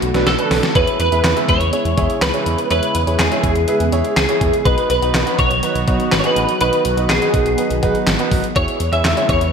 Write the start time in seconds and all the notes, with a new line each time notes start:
Already playing: D3 A3 B3 F#4
0.02 B1, closed hi-hat
0.14 B1 D4 A4 B4, snare, closed hi-hat
0.26 B1 A4, snare, closed hi-hat
0.39 D4 A4 B4, closed hi-hat
0.51 B1, snare, open hi-hat
0.63 snare, closed hi-hat
0.75 E2 C#3 G#3 B3 E4 G#4 B4 C#5, kick, closed hi-hat
0.87 closed hi-hat
1.00 E2 B4, closed hi-hat
1.12 E2 E4 G#4 E5, closed hi-hat
1.24 E2, snare, clap, closed hi-hat
1.36 E4 G#4 E5, closed hi-hat
1.48 E2 C#5, kick, closed hi-hat
1.61 E2, closed hi-hat
1.73 E4 G#4 C#5, closed hi-hat
1.85 E2, closed hi-hat
1.97 E2 E4 G#4 C#5, kick, closed hi-hat
2.10 closed hi-hat
2.22 C#2 B4, snare, clap, closed hi-hat
2.34 E4 G#4 C#5, closed hi-hat
2.46 E2, closed hi-hat
2.58 closed hi-hat
2.70 E2 E4 G#4 B4 C#5, closed hi-hat
2.83 closed hi-hat
2.95 E2, closed hi-hat
3.07 E2 E4 G#4 C#5, closed hi-hat
3.19 E2 G#4, snare, clap, closed hi-hat
3.32 E4 G#4 C#5, closed hi-hat
3.43 E2, kick, closed hi-hat
3.56 E2, closed hi-hat
3.68 E4 G#4 B4, closed hi-hat
3.80 E2, closed hi-hat
3.92 E2 E4 G#4 C#5, closed hi-hat
4.05 closed hi-hat
4.17 C#2 G#4, snare, clap, closed hi-hat
4.29 E4 G#4 C#5, closed hi-hat
4.41 E2, kick, closed hi-hat
4.54 closed hi-hat
4.65 B1 D#3 F#3 D#4 F#4 B4, kick, closed hi-hat
4.78 closed hi-hat
4.90 B1 B4, closed hi-hat
5.02 B1 D#4 F#4 B4, closed hi-hat
5.14 B1, snare, clap, closed hi-hat
5.26 D#4 F#4 B4, closed hi-hat
5.39 B1 C#5, kick, closed hi-hat
5.51 B1, closed hi-hat
5.63 D#4 F#4 B4, closed hi-hat
5.75 B1, closed hi-hat
5.88 B1 D#4 F#4 B4, kick, closed hi-hat
6.00 closed hi-hat
6.12 G#1 B4, snare, clap, closed hi-hat
6.19 C#5
6.24 D#4 F#4 G#4 B4, closed hi-hat
6.36 A1, closed hi-hat
6.49 closed hi-hat
6.61 B1 D#4 F#4 B4, closed hi-hat
6.73 closed hi-hat
6.85 B1, closed hi-hat
6.97 B1 D#4 F#4 B4, closed hi-hat
7.09 B1 G#4, snare, clap, closed hi-hat
7.22 D#4 F#4 B4, closed hi-hat
7.34 B1, kick, closed hi-hat
7.46 B1, closed hi-hat
7.58 D#4 F#4 B4, closed hi-hat
7.70 B1, closed hi-hat
7.83 B1 D#4 F#4 B4, kick, closed hi-hat
7.95 closed hi-hat
8.07 G#1, snare, clap, closed hi-hat
8.19 D#4 F#4 B4, closed hi-hat
8.31 A1, kick, open hi-hat
8.44 closed hi-hat
8.56 E2 C#3 G#3 E4 G#4 C#5, kick, closed hi-hat
8.68 closed hi-hat
8.80 E2, closed hi-hat
8.92 E2 E4 G#4 C#5 E5, closed hi-hat
9.04 E2, snare, clap, closed hi-hat
9.17 E4 G#4 C#5, closed hi-hat
9.29 E2 C#5, kick, closed hi-hat
9.41 E2, closed hi-hat